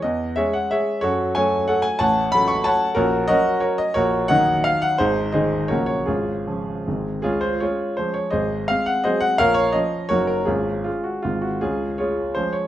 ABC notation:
X:1
M:3/4
L:1/8
Q:1/4=170
K:F#dor
V:1 name="Grand piano"
d2 [Gce] f [Gce]2 | [FAc]2 [cg]2 [Acf] g | [cfa]2 b c' [cfa]2 | [K:Db] [DGB]2 [GBe]2 [GBd] e |
[GBd]2 [deg]2 f g | [EAc]2 [Ace]2 [GBd] d | [DFA]4- [DFA] z | [DFA] c [FAd]2 c d |
[Ace]2 f g [Ace] g | [Bdf] d e2 [GBd] B | [DFA]2 F G F G | [DFA]2 [FAd]2 c d |]
V:2 name="Grand piano" clef=bass
E,,2 [G,C]4 | F,,2 [F,A,C]4 | A,,,2 [F,A,C]4 | [K:Db] B,,,2 [G,D]4 |
B,,,2 [E,G,E]4 | A,,,2 [E,A,E]2 [B,,,D,G,B,]2 | A,,,2 [D,F,D]2 [A,,,E,A,C]2 | D,,2 [A,D]2 [F,A,D]2 |
A,,,2 [A,C]2 [G,A,C]2 | B,,,2 [F,D]2 [G,,,G,B,E]2 | A,,,2 [A,D]2 [A,,,E,A,C]2 | D,,2 [A,D]2 [F,A,D]2 |]